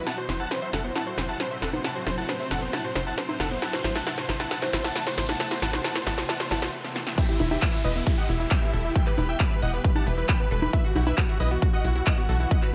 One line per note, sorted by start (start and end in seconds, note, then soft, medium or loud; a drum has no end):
0.00 1.80 F#4 medium
0.00 riser medium
0.07 3.59 A2 medium
0.07 7.14 C3 medium
0.07 3.59 F#3 medium
0.07 3.59 C4 medium
0.07 0.12 E4 medium
0.07 0.16 F#5 medium
0.07 0.15 A5 medium
0.07 0.16 A5 medium
0.07 snare medium
0.07 closed hi-hat medium
0.07 shaker soft
0.18 0.24 F#4 medium
0.18 0.27 C5 medium
0.18 closed hi-hat soft
0.29 0.47 F#1 loud
0.29 0.35 E4 medium
0.29 0.38 C5 medium
0.29 snare medium
0.29 open hi-hat loud
0.29 shaker medium
0.40 0.46 E4 medium
0.40 0.49 F#5 medium
0.40 0.49 A5 medium
0.40 closed hi-hat soft
0.40 shaker soft
0.51 0.60 B4 medium
0.51 0.60 C5 medium
0.51 snare medium
0.51 closed hi-hat medium
0.51 shaker soft
0.62 0.71 C5 medium
0.62 0.68 E5 medium
0.62 closed hi-hat soft
0.73 0.91 F#1 medium
0.73 0.79 E4 medium
0.73 0.82 A4 medium
0.73 0.82 F#5 medium
0.73 snare medium
0.73 open hi-hat medium
0.73 shaker medium
0.84 0.93 B3 medium
0.84 0.93 C5 medium
0.84 closed hi-hat medium
0.84 shaker soft
0.95 1.01 E4 loud
0.95 1.04 F#5 medium
0.95 1.04 A5 medium
0.95 snare medium
0.95 closed hi-hat medium
0.95 shaker soft
1.07 1.12 F#4 medium
1.07 1.16 C5 medium
1.07 closed hi-hat soft
1.18 1.35 F#1 medium
1.18 1.24 E4 medium
1.18 1.27 C5 medium
1.18 snare medium
1.18 open hi-hat loud
1.18 shaker medium
1.29 1.35 E4 medium
1.29 1.38 F#5 medium
1.29 1.38 A5 medium
1.29 closed hi-hat soft
1.29 shaker soft
1.40 1.49 B4 medium
1.40 1.49 C5 medium
1.40 snare medium
1.40 closed hi-hat medium
1.40 shaker soft
1.51 1.60 C5 medium
1.51 1.57 E5 medium
1.51 closed hi-hat soft
1.62 1.80 F#1 medium
1.62 1.68 E4 medium
1.62 1.71 A4 medium
1.62 1.71 F#5 medium
1.62 snare medium
1.62 open hi-hat medium
1.62 shaker medium
1.73 1.82 B3 medium
1.73 1.82 C5 medium
1.73 closed hi-hat soft
1.73 high conga medium
1.73 shaker soft
1.84 7.14 E4 medium
1.84 1.90 E4 loud
1.84 1.93 F#5 medium
1.84 1.93 A5 medium
1.84 snare medium
1.84 closed hi-hat medium
1.84 shaker soft
1.95 2.01 F#4 loud
1.95 2.04 C5 medium
1.95 closed hi-hat soft
2.07 2.24 F#1 loud
2.07 2.12 E4 medium
2.07 2.16 C5 medium
2.07 snare medium
2.07 open hi-hat medium
2.07 shaker medium
2.18 2.24 E4 medium
2.18 2.27 F#5 medium
2.18 2.27 A5 medium
2.18 closed hi-hat medium
2.18 shaker soft
2.29 2.38 B4 medium
2.29 2.38 C5 medium
2.29 snare medium
2.29 closed hi-hat medium
2.29 shaker soft
2.40 2.49 C5 medium
2.40 2.46 E5 medium
2.40 closed hi-hat medium
2.51 2.69 F#1 medium
2.51 2.57 E4 medium
2.51 2.60 A4 medium
2.51 2.60 F#5 medium
2.51 snare medium
2.51 open hi-hat medium
2.51 shaker medium
2.62 2.71 B3 medium
2.62 2.71 C5 medium
2.62 closed hi-hat medium
2.62 shaker soft
2.73 2.79 E4 loud
2.73 2.82 F#5 medium
2.73 2.82 A5 medium
2.73 snare medium
2.73 closed hi-hat medium
2.73 shaker soft
2.84 2.90 F#4 medium
2.84 2.93 C5 medium
2.84 closed hi-hat medium
2.95 3.13 F#1 medium
2.95 3.01 E4 medium
2.95 3.04 C5 medium
2.95 snare medium
2.95 open hi-hat loud
2.95 shaker medium
3.07 3.12 E4 medium
3.07 3.16 F#5 medium
3.07 3.16 A5 medium
3.07 closed hi-hat medium
3.07 shaker soft
3.18 3.26 B4 medium
3.18 3.27 C5 medium
3.18 snare medium
3.18 closed hi-hat medium
3.18 shaker soft
3.29 3.38 C5 medium
3.29 3.35 E5 medium
3.29 closed hi-hat medium
3.29 high conga medium
3.40 3.58 F#1 medium
3.40 3.46 E4 medium
3.40 3.49 A4 medium
3.40 3.49 F#5 medium
3.40 snare medium
3.40 open hi-hat medium
3.40 high conga medium
3.40 shaker medium
3.51 3.60 B3 medium
3.51 3.60 C5 medium
3.51 closed hi-hat medium
3.51 shaker soft
3.62 7.14 E3 medium
3.62 7.14 A3 medium
3.62 7.14 B3 medium
3.62 3.68 E4 loud
3.62 3.71 F#5 medium
3.62 3.71 A5 medium
3.62 3.71 A5 loud
3.62 snare medium
3.62 closed hi-hat medium
3.62 shaker soft
3.73 3.79 F#4 loud
3.73 3.82 C5 medium
3.73 snare medium
3.73 closed hi-hat soft
3.84 4.02 A1 loud
3.84 3.90 E4 medium
3.84 3.93 C5 medium
3.84 snare medium
3.84 open hi-hat loud
3.84 shaker medium
3.95 4.01 E4 medium
3.95 4.04 F#5 medium
3.95 4.04 A5 medium
3.95 snare medium
3.95 closed hi-hat medium
3.95 shaker soft
4.07 4.12 E4 loud
4.07 4.16 F#5 medium
4.07 4.16 A5 loud
4.07 snare medium
4.07 closed hi-hat medium
4.07 shaker soft
4.18 4.23 F#4 loud
4.18 4.27 C5 medium
4.18 snare medium
4.18 closed hi-hat medium
4.29 4.47 A1 medium
4.29 4.35 E4 medium
4.29 4.38 C5 medium
4.29 snare medium
4.29 open hi-hat medium
4.29 shaker medium
4.40 4.46 E4 medium
4.40 4.49 F#5 medium
4.40 4.49 A5 medium
4.40 snare medium
4.40 closed hi-hat medium
4.40 shaker soft
4.51 4.57 E4 loud
4.51 4.60 F#5 medium
4.51 4.60 A5 medium
4.51 4.60 A5 loud
4.51 snare loud
4.51 closed hi-hat medium
4.51 shaker soft
4.62 4.68 F#4 loud
4.62 4.71 C5 medium
4.62 snare medium
4.62 closed hi-hat medium
4.73 4.91 A1 medium
4.73 4.79 E4 medium
4.73 4.82 C5 medium
4.73 snare loud
4.73 open hi-hat loud
4.73 shaker medium
4.84 4.90 E4 medium
4.84 4.93 F#5 medium
4.84 4.93 A5 medium
4.84 4.93 A5 loud
4.84 snare medium
4.84 closed hi-hat medium
4.84 shaker soft
4.95 5.01 E4 loud
4.95 5.04 F#5 medium
4.95 5.04 A5 loud
4.95 5.04 A5 medium
4.95 snare loud
4.95 closed hi-hat medium
4.95 shaker soft
5.07 5.12 F#4 loud
5.07 5.16 C5 medium
5.07 snare medium
5.07 closed hi-hat medium
5.18 5.36 A1 medium
5.18 5.23 E4 medium
5.18 5.27 C5 medium
5.18 snare medium
5.18 open hi-hat medium
5.18 shaker medium
5.29 5.35 E4 medium
5.29 5.38 F#5 medium
5.29 5.38 A5 medium
5.29 snare medium
5.29 closed hi-hat medium
5.29 high conga medium
5.29 shaker soft
5.40 5.46 E4 loud
5.40 5.49 F#5 medium
5.40 5.49 A5 loud
5.40 5.49 A5 medium
5.40 snare loud
5.40 closed hi-hat medium
5.40 shaker soft
5.51 5.57 F#4 loud
5.51 5.60 C5 medium
5.51 snare medium
5.51 closed hi-hat medium
5.62 5.80 A1 loud
5.62 5.68 E4 loud
5.62 5.71 F#5 medium
5.62 5.71 A5 loud
5.62 snare loud
5.62 open hi-hat loud
5.62 shaker medium
5.73 5.79 F#4 loud
5.73 5.82 C5 medium
5.73 snare medium
5.73 closed hi-hat medium
5.73 high conga medium
5.73 shaker soft
5.84 5.90 E4 loud
5.84 5.93 F#5 medium
5.84 5.93 A5 loud
5.84 snare loud
5.84 closed hi-hat medium
5.84 shaker soft
5.95 6.01 F#4 loud
5.95 6.04 C5 medium
5.95 6.05 C5 medium
5.95 snare loud
5.95 closed hi-hat medium
6.07 6.24 A1 medium
6.07 6.12 E4 loud
6.07 6.16 F#5 medium
6.07 6.16 A5 loud
6.07 snare loud
6.07 open hi-hat medium
6.07 shaker medium
6.18 6.24 F#4 loud
6.18 6.27 C5 medium
6.18 snare medium
6.18 closed hi-hat medium
6.18 shaker soft
6.29 6.35 E4 loud
6.29 6.38 F#5 medium
6.29 6.38 A5 loud
6.29 snare loud
6.29 closed hi-hat medium
6.29 shaker soft
6.40 6.46 F#4 loud
6.40 6.49 C5 medium
6.40 snare medium
6.40 closed hi-hat medium
6.51 6.69 A1 loud
6.51 6.57 E4 loud
6.51 6.60 F#5 medium
6.51 6.60 A5 loud
6.51 snare loud
6.51 open hi-hat loud
6.51 shaker medium
6.62 6.68 F#4 loud
6.62 6.71 C5 medium
6.62 snare medium
6.62 shaker soft
6.84 snare medium
6.96 snare medium
7.07 snare medium
7.18 12.75 B2 medium
7.18 12.75 E3 medium
7.18 10.70 G3 medium
7.18 7.24 E4 loud
7.18 12.47 E4 medium
7.18 7.27 G4 medium
7.18 10.70 G4 medium
7.18 7.27 E5 loud
7.18 kick loud
7.18 closed hi-hat medium
7.18 crash loud
7.18 downlifter medium
7.18 shaker soft
7.29 7.38 E4 medium
7.29 7.35 G4 loud
7.29 closed hi-hat soft
7.40 7.58 E1 loud
7.40 7.49 E4 medium
7.40 7.46 E4 medium
7.40 open hi-hat loud
7.40 high conga medium
7.40 shaker medium
7.51 7.57 E4 medium
7.51 7.60 G4 medium
7.51 7.60 E5 medium
7.51 closed hi-hat medium
7.51 high conga medium
7.51 shaker soft
7.62 7.71 E4 medium
7.62 7.71 B4 medium
7.62 kick loud
7.62 clap loud
7.62 closed hi-hat medium
7.62 shaker soft
7.73 7.82 E4 medium
7.73 7.79 E5 medium
7.73 closed hi-hat medium
7.84 8.02 E1 medium
7.84 7.90 E4 medium
7.84 7.93 B4 medium
7.84 7.93 D#5 medium
7.84 open hi-hat loud
7.84 shaker medium
7.96 8.04 B3 medium
7.96 8.04 E4 medium
7.96 closed hi-hat medium
7.96 shaker soft
8.07 8.16 E4 medium
8.07 8.12 G4 loud
8.07 kick loud
8.07 closed hi-hat medium
8.07 shaker soft
8.18 8.24 G4 loud
8.18 8.27 D#5 medium
8.18 8.27 F#5 medium
8.18 8.27 F#5 loud
8.18 closed hi-hat medium
8.29 8.47 E1 medium
8.29 8.35 E4 medium
8.29 8.38 E4 medium
8.29 open hi-hat loud
8.29 shaker medium
8.40 8.46 E4 medium
8.40 8.49 E4 medium
8.40 closed hi-hat medium
8.40 shaker soft
8.51 8.60 E3 loud
8.51 8.60 E5 medium
8.51 8.60 G5 loud
8.51 kick loud
8.51 clap loud
8.51 closed hi-hat medium
8.51 shaker soft
8.62 8.68 B3 medium
8.62 8.71 E4 medium
8.62 closed hi-hat medium
8.73 8.91 E1 medium
8.73 8.82 E4 medium
8.73 8.79 A4 medium
8.73 open hi-hat loud
8.73 shaker medium
8.84 8.93 E4 medium
8.84 8.90 E4 medium
8.84 8.93 E4 medium
8.84 closed hi-hat medium
8.84 shaker soft
8.96 9.01 E4 loud
8.96 9.05 E5 medium
8.96 9.04 G5 loud
8.96 9.05 G5 loud
8.96 kick loud
8.96 closed hi-hat medium
8.96 shaker soft
9.07 9.12 G4 loud
9.07 9.16 B4 medium
9.07 clap soft
9.07 open hi-hat medium
9.18 9.36 E1 loud
9.18 9.24 E4 medium
9.18 9.27 B4 medium
9.18 open hi-hat loud
9.18 high conga medium
9.18 shaker medium
9.29 9.35 E4 medium
9.29 9.38 E5 medium
9.29 9.38 G5 medium
9.29 closed hi-hat medium
9.29 shaker soft
9.40 9.49 B4 medium
9.40 kick loud
9.40 clap loud
9.40 closed hi-hat medium
9.40 shaker soft
9.51 9.60 B4 medium
9.51 9.57 E5 medium
9.51 closed hi-hat medium
9.62 9.80 E1 medium
9.62 9.68 E4 medium
9.62 9.71 D#5 medium
9.62 9.71 F#5 medium
9.62 open hi-hat loud
9.62 shaker medium
9.73 9.82 B3 medium
9.73 9.82 B4 medium
9.73 closed hi-hat medium
9.73 shaker soft
9.84 9.90 G4 loud
9.84 9.93 B4 medium
9.84 kick loud
9.84 closed hi-hat medium
9.84 shaker soft
9.96 10.01 G4 loud
9.96 10.04 F#5 medium
9.96 10.04 A5 loud
9.96 closed hi-hat medium
9.96 high conga medium
10.07 10.24 E1 medium
10.07 10.12 E4 medium
10.07 10.16 B4 medium
10.07 open hi-hat loud
10.07 shaker medium
10.18 10.24 E4 medium
10.18 10.27 B4 medium
10.18 closed hi-hat medium
10.18 shaker soft
10.29 10.38 E3 loud
10.29 10.38 G5 medium
10.29 10.38 B5 loud
10.29 10.38 B5 medium
10.29 kick loud
10.29 clap loud
10.29 closed hi-hat medium
10.29 shaker soft
10.40 10.46 B3 medium
10.40 10.49 B4 medium
10.40 closed hi-hat medium
10.51 10.69 E1 medium
10.51 10.57 A4 medium
10.51 10.60 B4 medium
10.51 open hi-hat loud
10.51 shaker medium
10.62 10.68 E4 medium
10.62 10.71 B4 medium
10.62 closed hi-hat medium
10.62 high conga medium
10.62 shaker soft
10.73 12.75 F#3 medium
10.73 10.79 E4 loud
10.73 12.75 F#4 medium
10.73 10.82 B4 medium
10.73 10.82 E5 loud
10.73 kick loud
10.73 closed hi-hat medium
10.73 shaker soft
10.84 10.90 F#4 loud
10.84 10.93 F#4 medium
10.84 closed hi-hat medium
10.96 11.13 B1 loud
10.96 11.01 E4 medium
10.96 11.04 F#4 medium
10.96 open hi-hat loud
10.96 high conga medium
10.96 shaker medium
11.07 11.12 E4 medium
11.07 11.16 B4 medium
11.07 11.16 E5 loud
11.07 11.16 E5 medium
11.07 closed hi-hat medium
11.07 high conga medium
11.07 shaker soft
11.18 11.27 F#4 medium
11.18 11.26 B4 medium
11.18 kick loud
11.18 clap loud
11.18 closed hi-hat medium
11.18 shaker soft
11.29 11.38 F#4 medium
11.29 11.35 E5 medium
11.29 closed hi-hat medium
11.40 11.58 B1 medium
11.40 11.46 E4 medium
11.40 11.49 B4 medium
11.40 11.49 D#5 medium
11.40 11.49 D#5 loud
11.40 open hi-hat loud
11.40 shaker medium
11.51 11.60 B3 medium
11.51 11.60 F#4 medium
11.51 closed hi-hat medium
11.51 shaker soft
11.62 11.68 F#4 loud
11.62 11.71 F#4 medium
11.62 kick loud
11.62 closed hi-hat medium
11.62 shaker soft
11.73 11.79 F#4 loud
11.73 11.82 D#5 medium
11.73 11.82 F#5 medium
11.73 11.82 F#5 loud
11.73 closed hi-hat medium
11.84 12.02 B1 medium
11.84 11.90 E4 medium
11.84 11.93 F#4 medium
11.84 open hi-hat loud
11.84 shaker medium
11.96 12.01 E4 medium
11.96 12.04 F#4 medium
11.96 12.05 F#4 medium
11.96 closed hi-hat soft
11.96 shaker soft
12.07 12.15 E3 loud
12.07 12.16 D#5 medium
12.07 12.16 F#5 medium
12.07 12.16 F#5 loud
12.07 kick loud
12.07 clap loud
12.07 closed hi-hat medium
12.07 shaker soft
12.18 12.24 B3 medium
12.18 12.27 F#4 medium
12.18 closed hi-hat medium
12.29 12.47 B1 medium
12.29 12.38 F#4 medium
12.29 12.35 A4 medium
12.29 open hi-hat loud
12.29 shaker medium
12.40 12.46 E4 medium
12.40 12.49 F#4 medium
12.40 closed hi-hat soft
12.40 shaker soft
12.51 12.75 D#4 medium
12.51 12.57 E4 loud
12.51 12.60 D#5 medium
12.51 12.60 F#5 loud
12.51 kick loud
12.51 closed hi-hat medium
12.51 shaker soft
12.62 12.68 F#4 loud
12.62 12.71 B4 medium
12.62 clap soft
12.62 open hi-hat medium